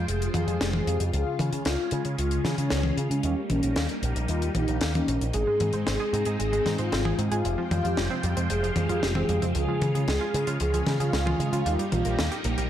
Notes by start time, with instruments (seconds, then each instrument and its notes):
Already playing: string machine F3 G#3 F4 C5 G5
0.08 picked electric bass F1, analog polysynth G#4, closed hi-hat
0.21 analog polysynth G#3 C4 F4 G4, closed hi-hat
0.34 picked electric bass F2, analog polysynth G#4, closed hi-hat, high tom
0.47 picked electric bass F2, closed hi-hat
0.60 picked electric bass F1, analog polysynth G#3 C4 F4 G4, snare, closed hi-hat
0.73 analog polysynth G#3 C4 F4 G4 G#4, high tom
0.87 picked electric bass F2, analog polysynth C#3 G#3 C4 F4 G4, closed hi-hat
1.00 picked electric bass F2, closed hi-hat
1.13 picked electric bass C#2, analog polysynth C#3 G#3 C#4 F4 G#4, string machine G#3 C#4, closed hi-hat
1.39 picked electric bass C#3, closed hi-hat, high tom
1.53 picked electric bass C#3, analog polysynth C#3 G#3 C#4 F4 G#4, closed hi-hat
1.65 picked electric bass C#2, analog polysynth F4, snare, closed hi-hat
1.91 picked electric bass C#3, analog polysynth C#3 G#3 C#4 F4 G#4, closed hi-hat
2.05 picked electric bass C#3, closed hi-hat
2.18 picked electric bass C#2, analog polysynth F4, closed hi-hat
2.31 analog polysynth C#3 G#3 C#4 F4 G#4, closed hi-hat
2.45 picked electric bass C#3, snare, closed hi-hat, high tom
2.58 picked electric bass C#3, analog polysynth C#4, closed hi-hat
2.70 picked electric bass C#2, analog polysynth C#3 G#3 C#4 F4 G#4, snare, closed hi-hat
2.83 analog polysynth C#3 G#3 C#4 F4 G#4, high tom
2.97 picked electric bass C#3, analog polysynth G#3 C#4 F4 G#4, closed hi-hat
3.10 picked electric bass C#3, analog polysynth C#4, closed hi-hat
3.23 picked electric bass D#2, string machine G3 A#3 D#4, analog polysynth G3 A#3 D#4 G4, closed hi-hat
3.50 picked electric bass A#1, analog polysynth C#4, closed hi-hat, high tom
3.63 picked electric bass A#1, analog polysynth G3 A#3 D#4 G4, closed hi-hat
3.76 picked electric bass D#2, snare, closed hi-hat
3.89 closed hi-hat
4.03 picked electric bass A#1, analog polysynth G3 A#3 D#4 G4, closed hi-hat
4.16 picked electric bass A#1, closed hi-hat
4.28 picked electric bass D#2, analog polysynth F4, closed hi-hat
4.42 analog polysynth G3 A#3 D#4 G4, closed hi-hat
4.55 picked electric bass A#1, analog polysynth G3 A#3 D#4 G4, closed hi-hat, high tom
4.68 picked electric bass A#1, closed hi-hat
4.81 picked electric bass D#2, snare, closed hi-hat
4.95 analog polysynth G3 A#3 C#4 D#4 G4, closed hi-hat, high tom
5.08 picked electric bass A#1, closed hi-hat
5.21 picked electric bass A#1, closed hi-hat
5.33 picked electric bass G#1, analog polysynth G#2 G#3 C4 D#4 G#4, string machine G#3 C4 D#4, synth arpeggio sound G#3, closed hi-hat
5.47 synth arpeggio sound G#3
5.60 picked electric bass G#2, synth arpeggio sound C4, closed hi-hat, high tom
5.73 picked electric bass G#2, analog polysynth G#2 G#3 C4 D#4 G#4, synth arpeggio sound C5, closed hi-hat
5.87 picked electric bass G#1, synth arpeggio sound C4, analog polysynth G#4, snare, closed hi-hat
6.00 synth arpeggio sound G#4
6.13 picked electric bass G#2, analog polysynth G#2 G#3 C4 D#4 G#4, synth arpeggio sound C4, closed hi-hat
6.25 picked electric bass G#2, synth arpeggio sound G#4, closed hi-hat
6.39 picked electric bass G#1, synth arpeggio sound G#3, analog polysynth G#4, closed hi-hat
6.53 analog polysynth G#2 G#3 C4 D#4 G#4, synth arpeggio sound G#3, closed hi-hat
6.66 picked electric bass G#2, synth arpeggio sound C4, snare, closed hi-hat, high tom
6.78 picked electric bass G#2, analog polysynth F4, synth arpeggio sound C5, closed hi-hat
6.92 picked electric bass G#1, analog polysynth G#2 G#3 C4 D#4 G#4, synth arpeggio sound C4, snare, closed hi-hat
7.05 analog polysynth G#2 G#3 C4 D#4 G#4, synth arpeggio sound G#4, high tom
7.18 picked electric bass G#2, analog polysynth G#3 C4 D#4 G#4, synth arpeggio sound C4, closed hi-hat
7.31 picked electric bass G#2, analog polysynth F4, synth arpeggio sound G#4, closed hi-hat
7.45 picked electric bass F1, string machine F3 G#3 F4 C5 G5, synth arpeggio sound F3, analog polysynth G#3 C4 F4 G4, closed hi-hat
7.58 synth arpeggio sound F3
7.71 picked electric bass F2, synth arpeggio sound G3, analog polysynth F4, closed hi-hat, high tom
7.84 picked electric bass F2, analog polysynth G#3 C4 F4 G4, synth arpeggio sound F4, closed hi-hat
7.97 picked electric bass F1, synth arpeggio sound G3, snare, closed hi-hat
8.10 synth arpeggio sound C4
8.23 picked electric bass F2, synth arpeggio sound G3, analog polysynth G#3 C4 F4 G4, closed hi-hat
8.37 picked electric bass F2, synth arpeggio sound C4, closed hi-hat
8.50 picked electric bass F1, synth arpeggio sound F3, analog polysynth G#4, closed hi-hat
8.63 synth arpeggio sound F3, analog polysynth G#3 C4 F4 G4, closed hi-hat
8.76 picked electric bass F2, synth arpeggio sound G3, analog polysynth G#4, closed hi-hat, high tom
8.89 picked electric bass F2, synth arpeggio sound F4, closed hi-hat
9.03 picked electric bass F1, synth arpeggio sound G3, analog polysynth G#3 C4 F4 G4, snare, closed hi-hat
9.15 analog polysynth G#3 C4 F4 G4 G#4, synth arpeggio sound C4, high tom
9.29 picked electric bass F2, analog polysynth C#3 G#3 C4 F4 G4, synth arpeggio sound G3, closed hi-hat
9.42 picked electric bass F2, synth arpeggio sound C4, closed hi-hat
9.55 picked electric bass C#2, analog polysynth C#3 G#3 C#4 F4 G#4, synth arpeggio sound F3, string machine G#3 C#4, closed hi-hat
9.68 synth arpeggio sound F3
9.82 picked electric bass C#3, synth arpeggio sound G#3, closed hi-hat, high tom
9.95 picked electric bass C#3, analog polysynth C#3 G#3 C#4 F4 G#4, synth arpeggio sound G#4, closed hi-hat
10.08 picked electric bass C#2, synth arpeggio sound G#3, analog polysynth G#4, snare, closed hi-hat
10.21 synth arpeggio sound F4
10.34 picked electric bass C#3, analog polysynth C#3 G#3 C#4 F4 G#4, synth arpeggio sound G#3, closed hi-hat
10.47 picked electric bass C#3, synth arpeggio sound F4, closed hi-hat
10.60 picked electric bass C#2, synth arpeggio sound F3, analog polysynth G#4, closed hi-hat
10.74 analog polysynth C#3 G#3 C#4 F4 G#4, synth arpeggio sound F3, closed hi-hat
10.86 picked electric bass C#3, synth arpeggio sound G#3, snare, closed hi-hat, high tom
11.00 picked electric bass C#3, analog polysynth F4, synth arpeggio sound G#4, closed hi-hat
11.13 picked electric bass C#2, analog polysynth C#3 G#3 C#4 F4 G#4, synth arpeggio sound G#3, snare, closed hi-hat
11.26 analog polysynth C#3 G#3 C#4 F4 G#4, synth arpeggio sound F4, high tom
11.39 picked electric bass C#3, analog polysynth G#3 C#4 F4 G#4, synth arpeggio sound G#3, closed hi-hat
11.53 picked electric bass C#3, synth arpeggio sound F4, analog polysynth F4, closed hi-hat
11.66 picked electric bass D#2, string machine G3 A#3 D#4, analog polysynth G3 A#3 D#4 G4, synth arpeggio sound G3, closed hi-hat
11.79 synth arpeggio sound G3, closed hi-hat
11.92 picked electric bass A#1, synth arpeggio sound A#3, analog polysynth F4, closed hi-hat, high tom
12.05 picked electric bass A#1, analog polysynth G3 A#3 D#4 G4, synth arpeggio sound A#4, closed hi-hat
12.18 picked electric bass D#2, synth arpeggio sound A#3, snare, closed hi-hat
12.32 synth arpeggio sound G4, closed hi-hat
12.44 picked electric bass A#1, analog polysynth G3 A#3 D#4 G4, synth arpeggio sound A#3, closed hi-hat
12.58 picked electric bass A#1, synth arpeggio sound G4, closed hi-hat